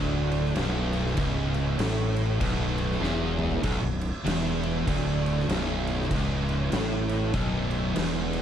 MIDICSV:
0, 0, Header, 1, 4, 480
1, 0, Start_track
1, 0, Key_signature, 2, "minor"
1, 0, Tempo, 616650
1, 918, Time_signature, 4, 2, 24, 8
1, 6553, End_track
2, 0, Start_track
2, 0, Title_t, "Distorted electric guitar"
2, 0, Program_c, 0, 30
2, 0, Note_on_c, 0, 38, 122
2, 429, Note_off_c, 0, 38, 0
2, 437, Note_on_c, 0, 35, 101
2, 903, Note_off_c, 0, 35, 0
2, 906, Note_on_c, 0, 37, 115
2, 1376, Note_off_c, 0, 37, 0
2, 1379, Note_on_c, 0, 45, 114
2, 1859, Note_off_c, 0, 45, 0
2, 1862, Note_on_c, 0, 35, 109
2, 2346, Note_off_c, 0, 35, 0
2, 2346, Note_on_c, 0, 40, 105
2, 2826, Note_off_c, 0, 40, 0
2, 2829, Note_on_c, 0, 35, 106
2, 2962, Note_off_c, 0, 35, 0
2, 2971, Note_on_c, 0, 35, 70
2, 3179, Note_off_c, 0, 35, 0
2, 3299, Note_on_c, 0, 40, 117
2, 3782, Note_off_c, 0, 40, 0
2, 3793, Note_on_c, 0, 38, 117
2, 4269, Note_off_c, 0, 38, 0
2, 4272, Note_on_c, 0, 35, 111
2, 4743, Note_off_c, 0, 35, 0
2, 4746, Note_on_c, 0, 37, 100
2, 5215, Note_off_c, 0, 37, 0
2, 5218, Note_on_c, 0, 45, 116
2, 5702, Note_off_c, 0, 45, 0
2, 5713, Note_on_c, 0, 35, 108
2, 6185, Note_off_c, 0, 35, 0
2, 6188, Note_on_c, 0, 40, 102
2, 6553, Note_off_c, 0, 40, 0
2, 6553, End_track
3, 0, Start_track
3, 0, Title_t, "Fingered electric bass"
3, 0, Program_c, 1, 33
3, 0, Note_on_c, 1, 26, 93
3, 405, Note_off_c, 1, 26, 0
3, 433, Note_on_c, 1, 23, 111
3, 884, Note_off_c, 1, 23, 0
3, 916, Note_on_c, 1, 25, 108
3, 1366, Note_off_c, 1, 25, 0
3, 1391, Note_on_c, 1, 33, 101
3, 1843, Note_off_c, 1, 33, 0
3, 1875, Note_on_c, 1, 23, 93
3, 2325, Note_off_c, 1, 23, 0
3, 2344, Note_on_c, 1, 28, 102
3, 2799, Note_off_c, 1, 28, 0
3, 2829, Note_on_c, 1, 23, 93
3, 2968, Note_off_c, 1, 23, 0
3, 2973, Note_on_c, 1, 23, 84
3, 3201, Note_off_c, 1, 23, 0
3, 3310, Note_on_c, 1, 28, 98
3, 3762, Note_off_c, 1, 28, 0
3, 3792, Note_on_c, 1, 26, 91
3, 4244, Note_off_c, 1, 26, 0
3, 4267, Note_on_c, 1, 23, 105
3, 4721, Note_off_c, 1, 23, 0
3, 4752, Note_on_c, 1, 25, 100
3, 5203, Note_off_c, 1, 25, 0
3, 5233, Note_on_c, 1, 33, 94
3, 5684, Note_off_c, 1, 33, 0
3, 5710, Note_on_c, 1, 23, 88
3, 6163, Note_off_c, 1, 23, 0
3, 6198, Note_on_c, 1, 28, 101
3, 6553, Note_off_c, 1, 28, 0
3, 6553, End_track
4, 0, Start_track
4, 0, Title_t, "Drums"
4, 246, Note_on_c, 9, 49, 59
4, 324, Note_off_c, 9, 49, 0
4, 353, Note_on_c, 9, 38, 34
4, 431, Note_off_c, 9, 38, 0
4, 432, Note_on_c, 9, 49, 92
4, 443, Note_on_c, 9, 38, 122
4, 510, Note_off_c, 9, 49, 0
4, 521, Note_off_c, 9, 38, 0
4, 724, Note_on_c, 9, 49, 73
4, 802, Note_off_c, 9, 49, 0
4, 830, Note_on_c, 9, 38, 36
4, 908, Note_off_c, 9, 38, 0
4, 909, Note_on_c, 9, 49, 92
4, 916, Note_on_c, 9, 36, 110
4, 987, Note_off_c, 9, 49, 0
4, 994, Note_off_c, 9, 36, 0
4, 1200, Note_on_c, 9, 49, 66
4, 1278, Note_off_c, 9, 49, 0
4, 1392, Note_on_c, 9, 49, 105
4, 1403, Note_on_c, 9, 38, 127
4, 1470, Note_off_c, 9, 49, 0
4, 1481, Note_off_c, 9, 38, 0
4, 1684, Note_on_c, 9, 49, 65
4, 1761, Note_off_c, 9, 49, 0
4, 1874, Note_on_c, 9, 49, 100
4, 1876, Note_on_c, 9, 36, 121
4, 1952, Note_off_c, 9, 49, 0
4, 1954, Note_off_c, 9, 36, 0
4, 2163, Note_on_c, 9, 49, 61
4, 2241, Note_off_c, 9, 49, 0
4, 2271, Note_on_c, 9, 38, 34
4, 2349, Note_off_c, 9, 38, 0
4, 2362, Note_on_c, 9, 38, 72
4, 2440, Note_off_c, 9, 38, 0
4, 2637, Note_on_c, 9, 45, 107
4, 2715, Note_off_c, 9, 45, 0
4, 2735, Note_on_c, 9, 43, 98
4, 2812, Note_off_c, 9, 43, 0
4, 2827, Note_on_c, 9, 49, 96
4, 2834, Note_on_c, 9, 36, 119
4, 2905, Note_off_c, 9, 49, 0
4, 2911, Note_off_c, 9, 36, 0
4, 3124, Note_on_c, 9, 49, 75
4, 3202, Note_off_c, 9, 49, 0
4, 3319, Note_on_c, 9, 49, 104
4, 3330, Note_on_c, 9, 38, 127
4, 3397, Note_off_c, 9, 49, 0
4, 3407, Note_off_c, 9, 38, 0
4, 3606, Note_on_c, 9, 49, 66
4, 3684, Note_off_c, 9, 49, 0
4, 3795, Note_on_c, 9, 36, 118
4, 3796, Note_on_c, 9, 49, 97
4, 3873, Note_off_c, 9, 36, 0
4, 3874, Note_off_c, 9, 49, 0
4, 4094, Note_on_c, 9, 49, 66
4, 4172, Note_off_c, 9, 49, 0
4, 4202, Note_on_c, 9, 38, 33
4, 4276, Note_on_c, 9, 49, 95
4, 4280, Note_off_c, 9, 38, 0
4, 4287, Note_on_c, 9, 38, 127
4, 4354, Note_off_c, 9, 49, 0
4, 4364, Note_off_c, 9, 38, 0
4, 4571, Note_on_c, 9, 49, 65
4, 4649, Note_off_c, 9, 49, 0
4, 4678, Note_on_c, 9, 38, 35
4, 4755, Note_on_c, 9, 36, 120
4, 4756, Note_off_c, 9, 38, 0
4, 4756, Note_on_c, 9, 49, 91
4, 4833, Note_off_c, 9, 36, 0
4, 4834, Note_off_c, 9, 49, 0
4, 5049, Note_on_c, 9, 49, 61
4, 5127, Note_off_c, 9, 49, 0
4, 5230, Note_on_c, 9, 49, 100
4, 5241, Note_on_c, 9, 38, 127
4, 5308, Note_off_c, 9, 49, 0
4, 5318, Note_off_c, 9, 38, 0
4, 5521, Note_on_c, 9, 49, 65
4, 5599, Note_off_c, 9, 49, 0
4, 5709, Note_on_c, 9, 49, 84
4, 5713, Note_on_c, 9, 36, 112
4, 5787, Note_off_c, 9, 49, 0
4, 5791, Note_off_c, 9, 36, 0
4, 5999, Note_on_c, 9, 49, 67
4, 6077, Note_off_c, 9, 49, 0
4, 6193, Note_on_c, 9, 49, 105
4, 6204, Note_on_c, 9, 38, 119
4, 6271, Note_off_c, 9, 49, 0
4, 6282, Note_off_c, 9, 38, 0
4, 6485, Note_on_c, 9, 49, 73
4, 6553, Note_off_c, 9, 49, 0
4, 6553, End_track
0, 0, End_of_file